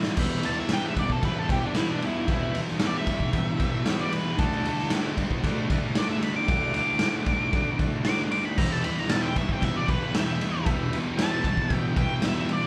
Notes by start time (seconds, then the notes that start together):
Already playing: A2 E3 A3
0.03 snare
0.16 E2 B2 G4 B4 E5, kick, crash
0.20 E3
0.43 E3 A5, ride
0.48 B2
0.60 E5
0.69 E2 B2 G4 B4 F#5, snare, ride
0.73 E3 G5
0.86 E5
0.96 E2 B2 E3 D5, kick, ride
1.10 A4, kick
1.23 E2 B2 G4 B4 E5, kick, ride
1.28 E3
1.39 A4
1.49 B2 E3 G4 B4 E5, kick, ride
1.54 E2
1.66 D4
1.75 E2 B2 E4 G4 B4 E5, snare, ride
1.80 E3
1.91 D4
2.02 E3, ride
2.06 B2 E4
2.27 E2 B2 G4 B4 E5, kick, ride
2.31 E3
2.54 E3, ride
2.58 B2
2.68 snare
2.80 E2 B2 G4 B4 E5, snare, ride
2.85 E3 D5
2.97 E5
3.07 B2 E3, kick, ride
3.12 E2
3.20 kick
3.32 E2 B2 G4 B4 E5, kick, ride
3.37 E3
3.59 B2 E3 G4 B4 E5, kick, ride
3.64 E2
3.84 E2 B2 G4 B4 D5, snare, ride
3.89 E3
4.01 D5
4.10 E3 B4, ride
4.15 B2
4.37 D3 A3 F#4 A4 D5, kick, ride
4.42 D4
4.52 snare
4.63 D4, ride
4.68 A3
4.79 snare
4.90 D3 A3 F#4 A4 D5, snare, ride
4.95 D4
5.17 A3 D4, kick, ride
5.22 D3
5.31 kick
5.43 D3 A3 F#4 A4 D5, kick, ride
5.47 D4
5.70 D3 A3 D4 F#4 A4 D5, kick, ride
5.95 D3 A3 F#4 A4 D5, snare, ride
6.00 D4
6.09 E5
6.20 D4 B5, ride
6.25 A3
6.36 D6
6.46 D3 A3, kick, ride
6.51 D4 F#4 A4 D5
6.73 A3 D4 D6, ride
6.99 D3 A3, snare, ride
7.03 D4 F#4 A4 D5
7.25 A3 D4, kick, ride
7.30 D3
7.51 D3 A3 F#4 A4 D5, kick, ride
7.56 D4
7.77 A3 D4 F#4, kick, ride
7.81 D3 A4 D5
8.04 D3 A3 F#4 A4 C5 D6, snare, ride
8.09 D4
8.31 D4 D6, ride
8.35 A3
8.45 B5
8.57 E2 B2 G4 B4 E5 A#5, kick, crash
8.62 E3
8.72 A5
8.84 E3 B5, ride
8.89 B2
8.97 A#5, snare
9.09 E2 B2 G4 B4 E5 A5, snare, ride
9.14 E3
9.22 G5
9.36 B2 E3 E5, kick, ride
9.40 E2
9.49 G5, kick
9.61 E2 B2 G4 B4 E5, kick, ride
9.67 E3
9.76 D5
9.86 E3 G4 B4 F#5, kick, ride
9.91 E2 B2
10.14 E2 B2 G4 B4 E5 G5, snare, ride
10.19 E3
10.41 E3, ride
10.45 B2
10.65 E2 G4 B4 E5, kick, ride
10.69 B2 E3
10.91 E3, ride
10.97 B2
11.17 E2 B2 G4 B4 E5 A5, snare, ride
11.22 E3
11.44 B2 E3, kick, ride
11.49 E2
11.57 kick
11.70 E2 B2 G4 B4 E5, kick, ride
11.75 E3 G5
11.95 B2 E3 G4 B4 E5 G5, kick, ride
12.00 E2
12.21 E2 B2 G4 B4 E5, snare, ride
12.25 E3
12.49 E3, ride
12.53 B2 D5